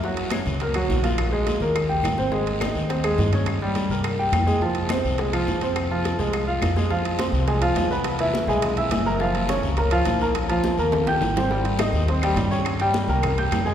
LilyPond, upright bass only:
\new Staff \with { instrumentName = "Upright bass" } { \clef bass \time 4/4 \key f \minor \tempo 4 = 209 fis,4. des,4. bes,,4~ | bes,,4. ees,4. aes,,4~ | aes,,4. ees,4. g,4~ | g,4. c,4. f,4~ |
f,4. c,4. f,4~ | f,4. c,4. f,4~ | f,4. c,4. e,4~ | e,4. b,,4. fis,,4~ |
fis,,4. des,4. bes,,4~ | bes,,4. ees,4. aes,,4~ | aes,,4. ees,4. g,4~ | g,4. c,4. f,4 | }